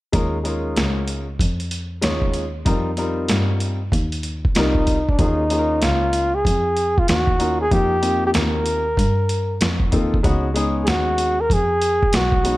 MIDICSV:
0, 0, Header, 1, 5, 480
1, 0, Start_track
1, 0, Tempo, 631579
1, 103, Time_signature, 4, 2, 24, 8
1, 9555, End_track
2, 0, Start_track
2, 0, Title_t, "Flugelhorn"
2, 0, Program_c, 0, 56
2, 3481, Note_on_c, 0, 63, 75
2, 3871, Note_on_c, 0, 62, 75
2, 3882, Note_off_c, 0, 63, 0
2, 3950, Note_off_c, 0, 62, 0
2, 3956, Note_on_c, 0, 63, 81
2, 4429, Note_on_c, 0, 65, 80
2, 4441, Note_off_c, 0, 63, 0
2, 4825, Note_on_c, 0, 68, 90
2, 4836, Note_off_c, 0, 65, 0
2, 5311, Note_on_c, 0, 65, 79
2, 5322, Note_off_c, 0, 68, 0
2, 5385, Note_off_c, 0, 65, 0
2, 5390, Note_on_c, 0, 66, 87
2, 5752, Note_off_c, 0, 66, 0
2, 5782, Note_on_c, 0, 68, 95
2, 5870, Note_on_c, 0, 67, 104
2, 5882, Note_off_c, 0, 68, 0
2, 6259, Note_off_c, 0, 67, 0
2, 6282, Note_on_c, 0, 67, 98
2, 6315, Note_off_c, 0, 67, 0
2, 6365, Note_on_c, 0, 70, 88
2, 7283, Note_off_c, 0, 70, 0
2, 8238, Note_on_c, 0, 68, 70
2, 8272, Note_on_c, 0, 66, 91
2, 8283, Note_off_c, 0, 68, 0
2, 8668, Note_on_c, 0, 70, 92
2, 8680, Note_off_c, 0, 66, 0
2, 8764, Note_on_c, 0, 68, 106
2, 8775, Note_off_c, 0, 70, 0
2, 9240, Note_on_c, 0, 66, 91
2, 9251, Note_off_c, 0, 68, 0
2, 9555, Note_off_c, 0, 66, 0
2, 9555, End_track
3, 0, Start_track
3, 0, Title_t, "Upright piano"
3, 0, Program_c, 1, 0
3, 95, Note_on_c, 1, 56, 69
3, 99, Note_on_c, 1, 61, 64
3, 101, Note_on_c, 1, 63, 67
3, 105, Note_on_c, 1, 65, 63
3, 113, Note_on_c, 1, 70, 80
3, 270, Note_off_c, 1, 56, 0
3, 272, Note_off_c, 1, 61, 0
3, 273, Note_off_c, 1, 63, 0
3, 275, Note_off_c, 1, 65, 0
3, 279, Note_off_c, 1, 70, 0
3, 330, Note_on_c, 1, 56, 67
3, 334, Note_on_c, 1, 61, 55
3, 342, Note_on_c, 1, 63, 56
3, 345, Note_on_c, 1, 65, 59
3, 351, Note_on_c, 1, 70, 69
3, 946, Note_off_c, 1, 56, 0
3, 948, Note_off_c, 1, 61, 0
3, 952, Note_off_c, 1, 63, 0
3, 953, Note_off_c, 1, 65, 0
3, 956, Note_off_c, 1, 70, 0
3, 1531, Note_on_c, 1, 56, 72
3, 1533, Note_on_c, 1, 61, 70
3, 1541, Note_on_c, 1, 63, 64
3, 1544, Note_on_c, 1, 65, 65
3, 1548, Note_on_c, 1, 73, 75
3, 1842, Note_off_c, 1, 56, 0
3, 1843, Note_off_c, 1, 61, 0
3, 1846, Note_off_c, 1, 63, 0
3, 1848, Note_off_c, 1, 65, 0
3, 1850, Note_off_c, 1, 73, 0
3, 2014, Note_on_c, 1, 55, 72
3, 2017, Note_on_c, 1, 60, 71
3, 2022, Note_on_c, 1, 63, 72
3, 2024, Note_on_c, 1, 65, 64
3, 2030, Note_on_c, 1, 70, 82
3, 2190, Note_off_c, 1, 55, 0
3, 2191, Note_off_c, 1, 60, 0
3, 2194, Note_off_c, 1, 63, 0
3, 2195, Note_off_c, 1, 65, 0
3, 2197, Note_off_c, 1, 70, 0
3, 2255, Note_on_c, 1, 55, 67
3, 2259, Note_on_c, 1, 60, 61
3, 2265, Note_on_c, 1, 63, 65
3, 2267, Note_on_c, 1, 65, 59
3, 2269, Note_on_c, 1, 70, 73
3, 2868, Note_off_c, 1, 55, 0
3, 2870, Note_off_c, 1, 60, 0
3, 2873, Note_off_c, 1, 63, 0
3, 2875, Note_off_c, 1, 65, 0
3, 2876, Note_off_c, 1, 70, 0
3, 3461, Note_on_c, 1, 55, 78
3, 3464, Note_on_c, 1, 60, 69
3, 3469, Note_on_c, 1, 63, 71
3, 3473, Note_on_c, 1, 65, 70
3, 3480, Note_on_c, 1, 70, 86
3, 3767, Note_off_c, 1, 55, 0
3, 3768, Note_off_c, 1, 60, 0
3, 3771, Note_off_c, 1, 63, 0
3, 3773, Note_off_c, 1, 65, 0
3, 3776, Note_off_c, 1, 70, 0
3, 3941, Note_on_c, 1, 58, 68
3, 3945, Note_on_c, 1, 61, 63
3, 3948, Note_on_c, 1, 63, 59
3, 3955, Note_on_c, 1, 65, 59
3, 3956, Note_on_c, 1, 68, 68
3, 4113, Note_off_c, 1, 58, 0
3, 4115, Note_off_c, 1, 61, 0
3, 4117, Note_off_c, 1, 63, 0
3, 4120, Note_off_c, 1, 65, 0
3, 4121, Note_off_c, 1, 68, 0
3, 4179, Note_on_c, 1, 58, 67
3, 4180, Note_on_c, 1, 61, 58
3, 4186, Note_on_c, 1, 63, 58
3, 4193, Note_on_c, 1, 65, 60
3, 4195, Note_on_c, 1, 68, 62
3, 4245, Note_on_c, 1, 70, 72
3, 4252, Note_off_c, 1, 68, 0
3, 4790, Note_off_c, 1, 58, 0
3, 4791, Note_off_c, 1, 61, 0
3, 4794, Note_off_c, 1, 63, 0
3, 4797, Note_off_c, 1, 65, 0
3, 4824, Note_off_c, 1, 70, 0
3, 5614, Note_on_c, 1, 58, 60
3, 5616, Note_on_c, 1, 61, 53
3, 5622, Note_on_c, 1, 63, 51
3, 5628, Note_on_c, 1, 65, 53
3, 5631, Note_on_c, 1, 70, 66
3, 5790, Note_off_c, 1, 58, 0
3, 5791, Note_off_c, 1, 61, 0
3, 5793, Note_off_c, 1, 63, 0
3, 5797, Note_off_c, 1, 65, 0
3, 5798, Note_off_c, 1, 70, 0
3, 5856, Note_on_c, 1, 58, 68
3, 5862, Note_on_c, 1, 60, 61
3, 5868, Note_on_c, 1, 63, 62
3, 5870, Note_on_c, 1, 65, 62
3, 5873, Note_on_c, 1, 67, 73
3, 6031, Note_off_c, 1, 58, 0
3, 6034, Note_off_c, 1, 60, 0
3, 6036, Note_off_c, 1, 63, 0
3, 6038, Note_off_c, 1, 65, 0
3, 6039, Note_off_c, 1, 67, 0
3, 6090, Note_on_c, 1, 58, 63
3, 6095, Note_on_c, 1, 60, 60
3, 6097, Note_on_c, 1, 63, 57
3, 6100, Note_on_c, 1, 65, 56
3, 6108, Note_on_c, 1, 67, 73
3, 6706, Note_off_c, 1, 58, 0
3, 6708, Note_off_c, 1, 60, 0
3, 6710, Note_off_c, 1, 63, 0
3, 6711, Note_off_c, 1, 65, 0
3, 6715, Note_off_c, 1, 67, 0
3, 7534, Note_on_c, 1, 58, 64
3, 7537, Note_on_c, 1, 60, 66
3, 7543, Note_on_c, 1, 63, 60
3, 7547, Note_on_c, 1, 65, 62
3, 7552, Note_on_c, 1, 69, 73
3, 7710, Note_off_c, 1, 58, 0
3, 7711, Note_off_c, 1, 60, 0
3, 7714, Note_off_c, 1, 63, 0
3, 7716, Note_off_c, 1, 65, 0
3, 7719, Note_off_c, 1, 69, 0
3, 7775, Note_on_c, 1, 56, 78
3, 7776, Note_on_c, 1, 59, 75
3, 7782, Note_on_c, 1, 61, 74
3, 7789, Note_on_c, 1, 63, 73
3, 7792, Note_on_c, 1, 66, 86
3, 7950, Note_off_c, 1, 56, 0
3, 7951, Note_off_c, 1, 59, 0
3, 7954, Note_off_c, 1, 61, 0
3, 7957, Note_off_c, 1, 63, 0
3, 7958, Note_off_c, 1, 66, 0
3, 8012, Note_on_c, 1, 56, 78
3, 8018, Note_on_c, 1, 59, 71
3, 8023, Note_on_c, 1, 61, 67
3, 8026, Note_on_c, 1, 63, 72
3, 8029, Note_on_c, 1, 68, 80
3, 8627, Note_off_c, 1, 56, 0
3, 8630, Note_off_c, 1, 59, 0
3, 8632, Note_off_c, 1, 61, 0
3, 8634, Note_off_c, 1, 63, 0
3, 8635, Note_off_c, 1, 68, 0
3, 9451, Note_on_c, 1, 56, 54
3, 9454, Note_on_c, 1, 59, 53
3, 9460, Note_on_c, 1, 61, 55
3, 9465, Note_on_c, 1, 63, 53
3, 9467, Note_on_c, 1, 66, 66
3, 9555, Note_off_c, 1, 56, 0
3, 9555, Note_off_c, 1, 59, 0
3, 9555, Note_off_c, 1, 61, 0
3, 9555, Note_off_c, 1, 63, 0
3, 9555, Note_off_c, 1, 66, 0
3, 9555, End_track
4, 0, Start_track
4, 0, Title_t, "Double bass"
4, 0, Program_c, 2, 43
4, 104, Note_on_c, 2, 39, 91
4, 559, Note_off_c, 2, 39, 0
4, 588, Note_on_c, 2, 37, 71
4, 1041, Note_off_c, 2, 37, 0
4, 1062, Note_on_c, 2, 41, 76
4, 1518, Note_off_c, 2, 41, 0
4, 1545, Note_on_c, 2, 39, 82
4, 2000, Note_off_c, 2, 39, 0
4, 2022, Note_on_c, 2, 41, 87
4, 2479, Note_off_c, 2, 41, 0
4, 2505, Note_on_c, 2, 43, 84
4, 2960, Note_off_c, 2, 43, 0
4, 2981, Note_on_c, 2, 39, 78
4, 3438, Note_off_c, 2, 39, 0
4, 3465, Note_on_c, 2, 36, 79
4, 3920, Note_off_c, 2, 36, 0
4, 3946, Note_on_c, 2, 39, 96
4, 4401, Note_off_c, 2, 39, 0
4, 4428, Note_on_c, 2, 37, 83
4, 4881, Note_off_c, 2, 37, 0
4, 4905, Note_on_c, 2, 41, 83
4, 5360, Note_off_c, 2, 41, 0
4, 5388, Note_on_c, 2, 39, 85
4, 5842, Note_off_c, 2, 39, 0
4, 5865, Note_on_c, 2, 41, 97
4, 6320, Note_off_c, 2, 41, 0
4, 6346, Note_on_c, 2, 39, 73
4, 6800, Note_off_c, 2, 39, 0
4, 6821, Note_on_c, 2, 43, 89
4, 7278, Note_off_c, 2, 43, 0
4, 7303, Note_on_c, 2, 41, 81
4, 7531, Note_off_c, 2, 41, 0
4, 7548, Note_on_c, 2, 39, 73
4, 7773, Note_off_c, 2, 39, 0
4, 7785, Note_on_c, 2, 37, 93
4, 8240, Note_off_c, 2, 37, 0
4, 8264, Note_on_c, 2, 39, 76
4, 8719, Note_off_c, 2, 39, 0
4, 8742, Note_on_c, 2, 41, 76
4, 9199, Note_off_c, 2, 41, 0
4, 9227, Note_on_c, 2, 35, 82
4, 9555, Note_off_c, 2, 35, 0
4, 9555, End_track
5, 0, Start_track
5, 0, Title_t, "Drums"
5, 100, Note_on_c, 9, 42, 66
5, 101, Note_on_c, 9, 36, 97
5, 176, Note_off_c, 9, 42, 0
5, 177, Note_off_c, 9, 36, 0
5, 342, Note_on_c, 9, 42, 62
5, 418, Note_off_c, 9, 42, 0
5, 581, Note_on_c, 9, 42, 68
5, 589, Note_on_c, 9, 38, 93
5, 657, Note_off_c, 9, 42, 0
5, 665, Note_off_c, 9, 38, 0
5, 817, Note_on_c, 9, 42, 66
5, 893, Note_off_c, 9, 42, 0
5, 1060, Note_on_c, 9, 36, 70
5, 1068, Note_on_c, 9, 42, 71
5, 1136, Note_off_c, 9, 36, 0
5, 1144, Note_off_c, 9, 42, 0
5, 1215, Note_on_c, 9, 42, 49
5, 1291, Note_off_c, 9, 42, 0
5, 1300, Note_on_c, 9, 42, 63
5, 1376, Note_off_c, 9, 42, 0
5, 1538, Note_on_c, 9, 42, 89
5, 1547, Note_on_c, 9, 38, 99
5, 1614, Note_off_c, 9, 42, 0
5, 1623, Note_off_c, 9, 38, 0
5, 1685, Note_on_c, 9, 36, 78
5, 1761, Note_off_c, 9, 36, 0
5, 1775, Note_on_c, 9, 42, 64
5, 1851, Note_off_c, 9, 42, 0
5, 2020, Note_on_c, 9, 42, 65
5, 2021, Note_on_c, 9, 36, 103
5, 2096, Note_off_c, 9, 42, 0
5, 2097, Note_off_c, 9, 36, 0
5, 2257, Note_on_c, 9, 42, 62
5, 2333, Note_off_c, 9, 42, 0
5, 2497, Note_on_c, 9, 42, 75
5, 2504, Note_on_c, 9, 38, 90
5, 2573, Note_off_c, 9, 42, 0
5, 2580, Note_off_c, 9, 38, 0
5, 2739, Note_on_c, 9, 42, 61
5, 2815, Note_off_c, 9, 42, 0
5, 2979, Note_on_c, 9, 36, 67
5, 2989, Note_on_c, 9, 42, 70
5, 3055, Note_off_c, 9, 36, 0
5, 3065, Note_off_c, 9, 42, 0
5, 3133, Note_on_c, 9, 42, 48
5, 3209, Note_off_c, 9, 42, 0
5, 3217, Note_on_c, 9, 42, 64
5, 3293, Note_off_c, 9, 42, 0
5, 3380, Note_on_c, 9, 36, 89
5, 3456, Note_off_c, 9, 36, 0
5, 3458, Note_on_c, 9, 42, 86
5, 3467, Note_on_c, 9, 38, 101
5, 3534, Note_off_c, 9, 42, 0
5, 3543, Note_off_c, 9, 38, 0
5, 3607, Note_on_c, 9, 36, 84
5, 3683, Note_off_c, 9, 36, 0
5, 3700, Note_on_c, 9, 42, 56
5, 3706, Note_on_c, 9, 36, 71
5, 3776, Note_off_c, 9, 42, 0
5, 3782, Note_off_c, 9, 36, 0
5, 3866, Note_on_c, 9, 36, 77
5, 3942, Note_off_c, 9, 36, 0
5, 3942, Note_on_c, 9, 42, 66
5, 3944, Note_on_c, 9, 36, 101
5, 4018, Note_off_c, 9, 42, 0
5, 4020, Note_off_c, 9, 36, 0
5, 4182, Note_on_c, 9, 42, 63
5, 4258, Note_off_c, 9, 42, 0
5, 4420, Note_on_c, 9, 42, 76
5, 4428, Note_on_c, 9, 38, 89
5, 4496, Note_off_c, 9, 42, 0
5, 4504, Note_off_c, 9, 38, 0
5, 4658, Note_on_c, 9, 42, 73
5, 4734, Note_off_c, 9, 42, 0
5, 4902, Note_on_c, 9, 36, 76
5, 4914, Note_on_c, 9, 42, 74
5, 4978, Note_off_c, 9, 36, 0
5, 4990, Note_off_c, 9, 42, 0
5, 5142, Note_on_c, 9, 42, 61
5, 5218, Note_off_c, 9, 42, 0
5, 5303, Note_on_c, 9, 36, 86
5, 5379, Note_off_c, 9, 36, 0
5, 5382, Note_on_c, 9, 42, 90
5, 5390, Note_on_c, 9, 38, 107
5, 5458, Note_off_c, 9, 42, 0
5, 5466, Note_off_c, 9, 38, 0
5, 5527, Note_on_c, 9, 36, 91
5, 5603, Note_off_c, 9, 36, 0
5, 5622, Note_on_c, 9, 42, 64
5, 5698, Note_off_c, 9, 42, 0
5, 5863, Note_on_c, 9, 36, 108
5, 5863, Note_on_c, 9, 42, 61
5, 5939, Note_off_c, 9, 36, 0
5, 5939, Note_off_c, 9, 42, 0
5, 6101, Note_on_c, 9, 42, 69
5, 6177, Note_off_c, 9, 42, 0
5, 6338, Note_on_c, 9, 42, 81
5, 6345, Note_on_c, 9, 38, 100
5, 6414, Note_off_c, 9, 42, 0
5, 6421, Note_off_c, 9, 38, 0
5, 6579, Note_on_c, 9, 42, 69
5, 6655, Note_off_c, 9, 42, 0
5, 6820, Note_on_c, 9, 36, 74
5, 6831, Note_on_c, 9, 42, 78
5, 6896, Note_off_c, 9, 36, 0
5, 6907, Note_off_c, 9, 42, 0
5, 7062, Note_on_c, 9, 42, 69
5, 7138, Note_off_c, 9, 42, 0
5, 7302, Note_on_c, 9, 42, 97
5, 7310, Note_on_c, 9, 38, 117
5, 7378, Note_off_c, 9, 42, 0
5, 7386, Note_off_c, 9, 38, 0
5, 7447, Note_on_c, 9, 36, 83
5, 7523, Note_off_c, 9, 36, 0
5, 7540, Note_on_c, 9, 42, 66
5, 7546, Note_on_c, 9, 36, 64
5, 7616, Note_off_c, 9, 42, 0
5, 7622, Note_off_c, 9, 36, 0
5, 7705, Note_on_c, 9, 36, 81
5, 7781, Note_off_c, 9, 36, 0
5, 7784, Note_on_c, 9, 36, 106
5, 7784, Note_on_c, 9, 42, 66
5, 7860, Note_off_c, 9, 36, 0
5, 7860, Note_off_c, 9, 42, 0
5, 8023, Note_on_c, 9, 42, 69
5, 8099, Note_off_c, 9, 42, 0
5, 8260, Note_on_c, 9, 42, 74
5, 8267, Note_on_c, 9, 38, 99
5, 8336, Note_off_c, 9, 42, 0
5, 8343, Note_off_c, 9, 38, 0
5, 8497, Note_on_c, 9, 42, 66
5, 8573, Note_off_c, 9, 42, 0
5, 8740, Note_on_c, 9, 36, 75
5, 8747, Note_on_c, 9, 42, 73
5, 8816, Note_off_c, 9, 36, 0
5, 8823, Note_off_c, 9, 42, 0
5, 8980, Note_on_c, 9, 42, 67
5, 9056, Note_off_c, 9, 42, 0
5, 9140, Note_on_c, 9, 36, 87
5, 9216, Note_off_c, 9, 36, 0
5, 9217, Note_on_c, 9, 42, 96
5, 9225, Note_on_c, 9, 38, 107
5, 9293, Note_off_c, 9, 42, 0
5, 9301, Note_off_c, 9, 38, 0
5, 9364, Note_on_c, 9, 36, 82
5, 9440, Note_off_c, 9, 36, 0
5, 9460, Note_on_c, 9, 42, 70
5, 9536, Note_off_c, 9, 42, 0
5, 9555, End_track
0, 0, End_of_file